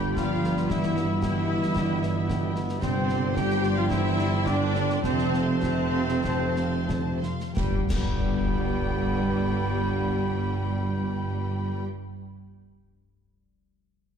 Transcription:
Already playing: tuba G1, harp G2 D3 G3 D4 B4 D5 B5, double bass section G2, trombone section D3 B3, cello section G3, french horn section G4, viola section G4, violin section B4 G5, oboe G5, clarinet G5, flute B5
0.04 harp G4
0.16 cello section F3, viola section F4, french horn section F4, violin section G4 D5 F5, harp D5, oboe F5, concert bass drum, snare
0.32 harp B5
0.43 violin section B4 G5, harp D5, snare
0.57 harp G4, snare
0.68 harp G2, trombone section B2, cello section E3, viola section E4, violin section G4 E5 G5, clarinet E5, oboe E5, concert bass drum, snare
0.73 french horn section E4
0.83 harp G3, snare
0.96 violin section B4 E5, harp B4, snare
1.21 cello section E3, viola section E4, french horn section E4, violin section G4 E5 G5, harp B4, oboe E5, concert bass drum, snare
1.49 violin section B4 E5, harp B4
1.63 harp G4, snare
1.76 harp G2, violin section G4 G5, concert bass drum, snare
1.90 harp G3
2.01 violin section B4 E5, harp B4, snare
2.16 harp G4
2.28 violin section G4 G5, harp B4, concert bass drum, snare
2.43 harp B5
2.54 violin section B4 E5, harp B4, snare
2.69 harp G4, snare
2.80 tuba G1, double bass section G2, harp G2, cello section C3, trombone section D3 C4, viola section C4, french horn section C4, violin section C5 G5, oboe C5, clarinet D5, flute G5, concert bass drum, snare, crash
2.97 harp G3
3.07 violin section D5 C6, snare
3.34 cello section G3, french horn section G4, viola section G4, violin section C5 G5, oboe G5, concert bass drum, snare
3.49 harp C6, snare
3.62 violin section D5 C6, harp D5, snare
3.74 cello section F3, french horn section F4, viola section F4, violin section F5, oboe F5
3.89 harp D3, cello section E3, french horn section E4, viola section E4, violin section C5 E5 G5, oboe E5, concert bass drum, snare
4.05 harp G3
4.18 harp C5, violin section D5 C6, snare
4.45 cello section D3, viola section D4, french horn section D4, violin section C5 D5 G5, oboe D5, harp D5, concert bass drum, snare
4.62 harp C6
4.75 harp D5, violin section D5 C6, snare
4.90 harp G4, snare
5.02 tuba F1, double bass section F2, harp F2, trombone section C3 A3, cello section C3, viola section C4, french horn section C4, violin section C5 A5, oboe C5, clarinet C5, flute A5, concert bass drum, snare
5.19 harp A3, snare
5.34 harp C5, violin section F5 C6, snare
5.59 cello section C3, french horn section C4, violin section C5, oboe C5, harp F5, concert bass drum, snare
5.63 viola section C4, violin section C5 A5
5.79 harp C6
5.94 harp F5, violin section F5 C6
6.09 snare
6.24 harp C3, violin section C5 A5, concert bass drum, snare
6.40 harp A3
6.56 harp C5, violin section F5 C6, snare
6.73 harp A4
6.89 violin section C5 A5, harp F5, concert bass drum, snare
7.06 harp C6
7.22 violin section F5 C6, harp F5, snare
7.40 harp A4, snare
7.55 tuba G1, double bass section G2, harp G2, french horn section B2, trombone section D3 B3, cello section G3, viola section G3, violin section B4 G5, clarinet D5, oboe G5, flute B5, concert bass drum, snare
7.64 harp G3
7.71 harp D4
7.79 harp B4
7.86 violin section B4 G5, harp D5, clarinet D5
7.90 tuba G1, double bass section G2, harp G2, cello section G3, viola section G3, violin section G5, oboe G5, flute B5, concert bass drum, snare, crash
7.97 harp G3
8.04 harp D4
8.11 harp B4
8.18 harp D5

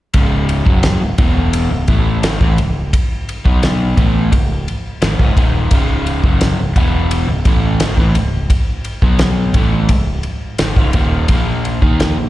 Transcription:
0.14 fingered electric bass C#1, overdriven electric guitar C#2 G#2 C#3, kick, ride
0.49 ride
0.66 fingered electric bass F#1, overdriven electric guitar F#2 C#3 F#3, kick
0.83 snare, ride
1.01 fingered electric bass C#1, overdriven electric guitar C#2 G#2
1.18 fingered electric bass E1, overdriven electric guitar E2 B2 E3, kick, ride
1.53 ride
1.71 fingered electric bass C#1, overdriven electric guitar C#2 G#2
1.88 fingered electric bass A1, overdriven electric guitar A2 E3 A3, kick, ride
2.23 fingered electric bass G#1, overdriven electric guitar G#2 D#3, snare, ride
2.41 fingered electric bass A1, overdriven electric guitar A2 E3, kick
2.58 fingered electric bass C#1, overdriven electric guitar C#2 G#2, ride
2.93 kick, ride
3.29 ride
3.45 fingered electric bass B1, overdriven electric guitar B2 F#3 B3, kick
3.63 snare, ride
3.97 fingered electric bass A1, overdriven electric guitar A2 E3 A3, kick, ride
4.32 fingered electric bass C#1, overdriven electric guitar C#2 G#2, kick, ride
4.68 ride
5.02 fingered electric bass G#1, overdriven electric guitar G#2 D#3, snare, ride
5.19 fingered electric bass C#1, overdriven electric guitar C#2 G#2, kick
5.37 fingered electric bass D#1, overdriven electric guitar D#2 A#2 D#3, kick, ride
5.71 fingered electric bass C#1, overdriven electric guitar C#2 G#2 C#3, kick, ride
6.07 ride
6.24 fingered electric bass F#1, overdriven electric guitar F#2 C#3 F#3, kick
6.41 snare, ride
6.58 fingered electric bass C#1, overdriven electric guitar C#2 G#2
6.76 fingered electric bass E1, overdriven electric guitar E2 B2 E3, kick, ride
7.11 ride
7.28 fingered electric bass C#1, overdriven electric guitar C#2 G#2
7.45 fingered electric bass A1, overdriven electric guitar A2 E3 A3, kick, ride
7.80 fingered electric bass G#1, overdriven electric guitar G#2 D#3, snare, ride
7.97 fingered electric bass A1, overdriven electric guitar A2 E3, kick
8.14 fingered electric bass C#1, overdriven electric guitar C#2 G#2, ride
8.50 kick, ride
8.85 ride
9.02 fingered electric bass B1, overdriven electric guitar B2 F#3 B3, kick
9.19 snare, ride
9.54 fingered electric bass A1, overdriven electric guitar A2 E3 A3, kick, ride
9.89 fingered electric bass C#1, overdriven electric guitar C#2 G#2, kick, ride
10.23 ride
10.58 fingered electric bass G#1, overdriven electric guitar G#2 D#3, snare, ride
10.76 fingered electric bass C#1, overdriven electric guitar C#2 G#2, kick
10.93 fingered electric bass D#1, overdriven electric guitar D#2 A#2 D#3, kick, ride
11.28 fingered electric bass A#1, overdriven electric guitar A#2 F3 A#3, kick, ride
11.65 ride
11.82 fingered electric bass D#2, overdriven electric guitar D#3 A#3 D#4, kick
12.00 snare, ride
12.17 fingered electric bass A#1, overdriven electric guitar A#2 F3

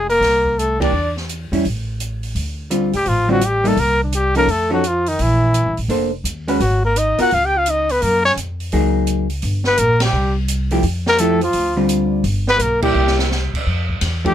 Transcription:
Already playing: upright bass F1
0.10 tenor saxophone A#3, trumpet A#4, open hi-hat
0.21 upright bass C2, snare, open hi-hat
0.45 kick
0.58 tenor saxophone A3, trumpet A4, closed hi-hat
0.80 hollow-body jazz guitar E3 A#3 D4 G4, tenor saxophone D4, trumpet D5, kick, ride
0.93 upright bass E2
1.17 snare
1.29 closed hi-hat
1.52 upright bass E2, hollow-body jazz guitar G3 C#4 E4, open hi-hat
1.65 upright bass A1, open hi-hat
2.00 closed hi-hat
2.23 open hi-hat
2.35 upright bass D2, open hi-hat
2.70 hollow-body jazz guitar D3 G3 C4 F4, closed hi-hat
2.93 upright bass C#2, tenor saxophone G3, trumpet G4, open hi-hat
3.05 upright bass A1, tenor saxophone F3, trumpet F4, open hi-hat
3.28 hollow-body jazz guitar D3 G3 C4 F4, tenor saxophone F#3, trumpet F#4
3.41 tenor saxophone G3, closed hi-hat
3.46 trumpet G4
3.64 hollow-body jazz guitar G3 A#3 D#4, tenor saxophone A3, trumpet A4, open hi-hat
3.77 upright bass C2, tenor saxophone A#3, trumpet A#4, open hi-hat
4.02 tenor saxophone D3, trumpet D4
4.12 tenor saxophone G3, trumpet G4, closed hi-hat
4.35 hollow-body jazz guitar F3 C#4 D#4 A4, tenor saxophone A#3, trumpet A#4, open hi-hat
4.47 upright bass F2, tenor saxophone A3, trumpet A4, open hi-hat
4.70 hollow-body jazz guitar F3 C#4 D#4 A4, trumpet F#4
4.74 tenor saxophone F#3
4.84 tenor saxophone F3, trumpet F4, closed hi-hat
5.06 tenor saxophone D#3, trumpet D#4, open hi-hat
5.19 upright bass A#1, tenor saxophone E3, trumpet E4, open hi-hat
5.54 closed hi-hat
5.66 upright bass C2
5.77 upright bass A1, open hi-hat
5.88 upright bass F1, hollow-body jazz guitar A#3 D4 A4 C5, open hi-hat
6.24 upright bass D#2, closed hi-hat
6.48 hollow-body jazz guitar G#3 C#4 F#4 B4, open hi-hat
6.60 upright bass G#1, tenor saxophone F#3, trumpet F#4, open hi-hat
6.84 tenor saxophone A#3, trumpet A#4
6.96 tenor saxophone D#4, trumpet D#5, closed hi-hat
7.18 hollow-body jazz guitar B3 F4 A#4, tenor saxophone F#4, trumpet F#5, muted upright bass stroke, open hi-hat
7.31 upright bass C#2, tenor saxophone F4, trumpet F5, open hi-hat
7.44 tenor saxophone G4, trumpet G5
7.56 tenor saxophone F4, trumpet F5
7.66 tenor saxophone D#4, closed hi-hat
7.70 trumpet D#5
7.89 tenor saxophone B3, trumpet B4, open hi-hat
8.01 upright bass F#2, tenor saxophone A#3, trumpet A#4, open hi-hat
8.25 tenor saxophone C#4, trumpet C#5, snare
8.36 upright bass F2, closed hi-hat
8.60 open hi-hat
8.72 upright bass C#2, hollow-body jazz guitar F#3 A#3 D#4 G#4, open hi-hat
9.07 closed hi-hat
9.30 open hi-hat
9.42 upright bass G1, open hi-hat
9.64 tenor saxophone B3, trumpet B4, snare
9.77 upright bass A#1, tenor saxophone A#3, trumpet A#4, closed hi-hat
10.00 tenor saxophone G3, trumpet G4, snare, ride
10.13 upright bass C2
10.48 closed hi-hat
10.71 hollow-body jazz guitar F3 A3 E4 G4, open hi-hat
10.83 upright bass F2, open hi-hat
11.06 tenor saxophone A#3, trumpet A#4, snare
11.18 hollow-body jazz guitar F3 A3 E4 G4, tenor saxophone A3, trumpet A4, closed hi-hat
11.41 tenor saxophone F3, trumpet F4, open hi-hat
11.53 upright bass D2, open hi-hat
11.77 hollow-body jazz guitar D3 G3 C4 F4
11.89 closed hi-hat
12.24 upright bass G1, open hi-hat
12.47 tenor saxophone B3, trumpet B4, snare
12.58 upright bass B1, tenor saxophone A#3, trumpet A#4, closed hi-hat
12.82 tenor saxophone G3, hollow-body jazz guitar A#3 E4 G4, trumpet G4, kick, crash
12.95 upright bass C2
13.07 snare
13.19 snare
13.31 snare
13.54 muted upright bass stroke, kick, crash
13.67 upright bass F2
13.89 kick
14.01 upright bass E2, snare, hi-hat pedal, ride
14.24 hollow-body jazz guitar F3 A3 D4 G4, trumpet G4, kick, ride

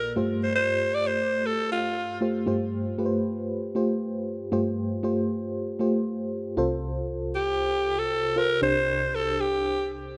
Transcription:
Already playing: fm electric piano A#1 A#2 A#3 F4 A4 D5, alto saxophone A#4
0.16 fm electric piano G2 A3 F4 G4 C5
0.43 alto saxophone C5
0.56 alto saxophone C5
0.95 alto saxophone D5
1.07 alto saxophone C5
1.46 alto saxophone A4
1.72 alto saxophone F4
2.21 fm electric piano A3 F4 G4 C5
2.46 fm electric piano G2 A3 F4 G4 C5
2.98 fm electric piano A3 F4 G4 B4
3.06 fm electric piano C5
3.75 fm electric piano A3 F4 G4 C5
4.52 fm electric piano G2 A3 F4 G4 C5
5.03 fm electric piano A3 F4 G4 C5
5.79 fm electric piano A3 F4 G4 C5
6.57 fm electric piano C2 C3 F4 A4 C5
7.35 alto saxophone G4
7.99 alto saxophone A4
8.36 fm electric piano F4 A4 C5, alto saxophone A#4
8.62 fm electric piano C2 C3 D4 G4 C5, alto saxophone C5
9.15 alto saxophone A4
9.41 alto saxophone G4

